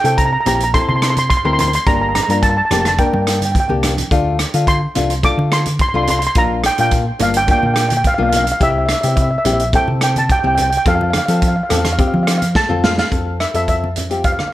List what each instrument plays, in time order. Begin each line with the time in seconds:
0.04 fingered electric bass C3, nylon-string guitar C4 E4 A4, steel pan G5, closed hi-hat
0.18 steel pan A#5, kick, closed hi-hat
0.25 steel pan A#5
0.33 steel pan A#5
0.40 steel pan A#5
0.45 fingered electric bass A#1, nylon-string guitar C4 E4 G4, steel pan A#5, closed hi-hat, low conga
0.55 steel pan A#5
0.60 steel pan A#5, closed hi-hat
0.74 nylon-string guitar C4 E4 A4, steel pan C6, kick, closed hi-hat
0.82 steel pan C6
0.89 fingered electric bass C3, steel pan C6, high conga
0.96 steel pan C6
1.02 steel pan C6, cross-stick, closed hi-hat
1.10 steel pan C6
1.17 steel pan C6, closed hi-hat, high conga
1.30 steel pan C6, kick, closed hi-hat
1.37 steel pan C6
1.45 fingered electric bass D2, nylon-string guitar C4 E4 A#4, steel pan C6
1.53 steel pan C6
1.59 steel pan C6, closed hi-hat, low conga
1.68 steel pan C6
1.73 steel pan C6, closed hi-hat
1.86 fingered electric bass G1, nylon-string guitar A#3 D4 G4, steel pan A#5, kick, closed hi-hat, low conga
1.95 steel pan A#5
2.01 steel pan A#5
2.09 steel pan A#5
2.15 steel pan A#5, cross-stick, closed hi-hat, low conga
2.23 steel pan A#5
2.29 fingered electric bass G2, nylon-string guitar A#3 D4 F4, steel pan A#5, closed hi-hat
2.42 steel pan A5, kick, closed hi-hat
2.49 steel pan A5
2.57 steel pan A5
2.65 steel pan A5
2.70 fingered electric bass F1, nylon-string guitar A#3 D4 G4, steel pan A5, cross-stick, closed hi-hat, low conga
2.80 steel pan A5
2.85 steel pan A5, cross-stick, closed hi-hat, high conga
2.98 nylon-string guitar A#3 D4 A#4, steel pan G5, kick, closed hi-hat
3.07 steel pan G5
3.13 fingered electric bass G2, steel pan G5, high conga
3.22 steel pan G5
3.27 steel pan G5, cross-stick, closed hi-hat
3.38 steel pan G5, high conga
3.42 steel pan G5, closed hi-hat
3.52 steel pan G5, kick, closed hi-hat, high conga
3.60 steel pan G5
3.68 fingered electric bass C2, nylon-string guitar A#3 D4 G4, steel pan G5, high conga
3.83 cross-stick, closed hi-hat, low conga
3.98 closed hi-hat, low conga
4.11 fingered electric bass D2, nylon-string guitar A3 D4 F4, kick, closed hi-hat
4.39 cross-stick, closed hi-hat
4.54 fingered electric bass D3, nylon-string guitar A3 D4 F4, closed hi-hat
4.67 steel pan C6, kick, closed hi-hat
4.95 fingered electric bass C2, nylon-string guitar A3 D4 F4, closed hi-hat, low conga
5.10 closed hi-hat
5.23 nylon-string guitar A3 D4 F4, steel pan D6, kick, closed hi-hat
5.38 fingered electric bass D3, high conga
5.52 steel pan C6, cross-stick, closed hi-hat
5.65 closed hi-hat, high conga
5.79 steel pan C6, kick, closed hi-hat
5.89 steel pan C6
5.94 fingered electric bass C2, nylon-string guitar A3 D4 F4, steel pan C6
6.03 steel pan C6
6.07 steel pan C6, closed hi-hat, low conga
6.19 steel pan C6, closed hi-hat
6.27 steel pan C6
6.35 fingered electric bass A#1, nylon-string guitar A#3 D4 F4, steel pan A#5, kick, closed hi-hat
6.64 steel pan G5, cross-stick, closed hi-hat
6.78 fingered electric bass A#2, nylon-string guitar A#3 D4 F4, steel pan G5, closed hi-hat
6.91 kick, closed hi-hat
7.19 fingered electric bass G1, nylon-string guitar A#3 D4 F4, steel pan F5, closed hi-hat, low conga
7.34 steel pan G5, closed hi-hat
7.47 nylon-string guitar A#3 D4 F4, kick, closed hi-hat
7.51 steel pan G5
7.59 steel pan G5
7.63 fingered electric bass A#2, steel pan G5, high conga
7.74 steel pan G5, cross-stick, closed hi-hat
7.81 steel pan G5
7.89 steel pan G5, closed hi-hat, high conga
7.97 steel pan G5
8.04 steel pan F5, kick, closed hi-hat
8.14 nylon-string guitar A#3 D4, steel pan F5
8.18 fingered electric bass B1, nylon-string guitar F4
8.23 steel pan F5
8.29 steel pan F5, closed hi-hat
8.33 steel pan F5, low conga
8.44 steel pan F5, closed hi-hat
8.52 steel pan F5
8.60 fingered electric bass C2, nylon-string guitar C4 E4 G4, steel pan E5, kick, closed hi-hat
8.71 steel pan E5
8.78 steel pan E5
8.86 steel pan E5, cross-stick, closed hi-hat
8.93 steel pan E5
9.01 fingered electric bass C3, nylon-string guitar C4 E4 G4, steel pan E5, closed hi-hat
9.08 steel pan E5
9.16 steel pan E5, kick, closed hi-hat
9.22 steel pan E5
9.31 steel pan E5
9.38 steel pan E5
9.45 fingered electric bass A#1, nylon-string guitar C4 E4 G4, steel pan E5, closed hi-hat, low conga
9.53 steel pan E5
9.60 steel pan E5, closed hi-hat
9.73 nylon-string guitar C4 E4 A4, steel pan G5, kick, closed hi-hat
9.88 fingered electric bass C3, high conga
10.01 steel pan G5, cross-stick, closed hi-hat
10.16 steel pan A5, closed hi-hat, high conga
10.30 steel pan G5, kick, closed hi-hat
10.39 steel pan G5
10.43 fingered electric bass C2, nylon-string guitar C4 E4 G4, steel pan G5
10.55 steel pan G5, closed hi-hat, low conga
10.62 steel pan G5
10.70 steel pan G5, closed hi-hat
10.77 steel pan G5
10.85 fingered electric bass F2, nylon-string guitar C4 F4 A4, steel pan F5, kick, closed hi-hat, low conga
10.95 steel pan F5
11.01 steel pan F5, high conga
11.10 steel pan F5, cross-stick, closed hi-hat
11.15 steel pan F5, high conga
11.26 fingered electric bass F3, nylon-string guitar C4 F4 A4, steel pan F5, closed hi-hat
11.34 steel pan F5
11.40 steel pan F5, kick, closed hi-hat
11.48 steel pan F5
11.56 steel pan F5
11.63 steel pan F5
11.69 fingered electric bass E2, nylon-string guitar C4 F4 A4, steel pan F5, cross-stick, closed hi-hat, low conga
11.78 steel pan F5
11.85 steel pan F5, cross-stick, closed hi-hat, high conga
11.93 steel pan F5
11.98 nylon-string guitar C4 F4 G4, steel pan F5, kick, closed hi-hat
12.08 steel pan F5
12.13 fingered electric bass F3, steel pan F5, high conga
12.23 steel pan F5
12.27 steel pan F5, cross-stick, closed hi-hat
12.38 steel pan F5, closed hi-hat
12.42 high conga
12.55 steel pan A5, kick, snare, high conga
12.69 fingered electric bass F2, nylon-string guitar C4 F4 A4, high conga
12.84 steel pan F5, snare, low conga
12.98 steel pan F5, snare, low conga
13.11 fingered electric bass F2, nylon-string guitar C4 F4 A4, kick, closed hi-hat, low conga
13.40 steel pan E5, cross-stick, closed hi-hat
13.54 fingered electric bass F2, nylon-string guitar C4 F4 A4, steel pan E5, closed hi-hat
13.68 steel pan E5, kick, closed hi-hat
13.84 high conga
13.96 closed hi-hat, low conga
14.10 nylon-string guitar C4 F4 G4, closed hi-hat
14.24 steel pan F5, kick, closed hi-hat
14.32 steel pan F5
14.39 steel pan F5, cross-stick, high conga
14.48 steel pan F5